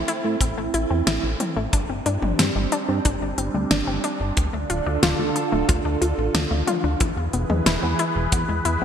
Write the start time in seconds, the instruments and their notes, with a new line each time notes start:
Already playing: analog synth pad A3 C4 E4
0.08 synth arpeggio sound E4, closed hi-hat
0.25 analog synth bass A2
0.41 analog synth bass A1, synth arpeggio sound C4, kick, closed hi-hat
0.57 analog synth bass A1, synth arpeggio sound A3
0.74 analog synth bass A1, synth arpeggio sound E4, closed hi-hat
0.90 analog synth bass E2, synth arpeggio sound C4
1.07 analog synth bass A1, synth arpeggio sound E4, snare, closed hi-hat
1.23 analog synth bass A1
1.40 synth arpeggio sound C4, closed hi-hat, mid tom
1.56 analog synth bass A1, synth arpeggio sound A3
1.73 analog synth bass G1, analog synth pad G3 C4 D4, synth arpeggio sound D4, kick, closed hi-hat
1.89 analog synth bass G1, synth arpeggio sound C4
2.06 analog synth bass G2, synth arpeggio sound D4, closed hi-hat
2.22 analog synth bass G1, mid tom
2.39 analog synth bass G2, synth arpeggio sound C4, snare, closed hi-hat
2.56 analog synth bass G1, synth arpeggio sound G3
2.72 synth arpeggio sound D4, closed hi-hat
2.89 analog synth bass G2, synth arpeggio sound C4
3.05 analog synth bass G1, synth arpeggio sound D4, kick, closed hi-hat
3.21 analog synth bass G1
3.38 analog synth bass G1, synth arpeggio sound C4, closed hi-hat
3.54 analog synth bass D2, synth arpeggio sound G3
3.71 analog synth bass G1, synth arpeggio sound D4, snare, closed hi-hat
3.87 analog synth bass G1, synth arpeggio sound C4
4.04 synth arpeggio sound D4, closed hi-hat
4.20 analog synth bass G1
4.37 analog synth bass D2, analog synth pad D3 F4 A4, synth arpeggio sound D4, kick, closed hi-hat
4.53 analog synth bass D2, synth arpeggio sound A3
4.70 analog synth bass D1, synth arpeggio sound F4, closed hi-hat
4.86 analog synth bass D2, synth arpeggio sound D4
5.03 analog synth bass D1, synth arpeggio sound F4, snare, closed hi-hat
5.19 analog synth bass D2
5.36 synth arpeggio sound D4, closed hi-hat
5.52 analog synth bass D1, synth arpeggio sound A3
5.69 analog synth bass D2, synth arpeggio sound F4, kick, closed hi-hat
5.85 analog synth bass D2, synth arpeggio sound D4
6.01 analog synth bass D2, synth arpeggio sound F4, closed hi-hat
6.18 analog synth bass A1
6.34 analog synth bass D2, synth arpeggio sound D4, snare, closed hi-hat
6.51 analog synth bass D2, synth arpeggio sound A3
6.67 synth arpeggio sound F4, closed hi-hat, mid tom
6.84 analog synth bass D2, synth arpeggio sound D4
7.00 analog synth bass E2, analog synth pad E3 E4 G#4 B4, synth arpeggio sound E4, kick, closed hi-hat
7.17 analog synth bass E2
7.33 analog synth bass E1, synth arpeggio sound B3, closed hi-hat
7.50 analog synth bass E2, synth arpeggio sound G#3, mid tom
7.66 analog synth bass E1, synth arpeggio sound E4, snare, closed hi-hat
7.83 analog synth bass E2, synth arpeggio sound B3
7.99 synth arpeggio sound E4, closed hi-hat
8.16 analog synth bass E1
8.32 analog synth bass E2, synth arpeggio sound B3, kick, closed hi-hat
8.49 analog synth bass E2, synth arpeggio sound G#3
8.65 analog synth bass E2, synth arpeggio sound E4, closed hi-hat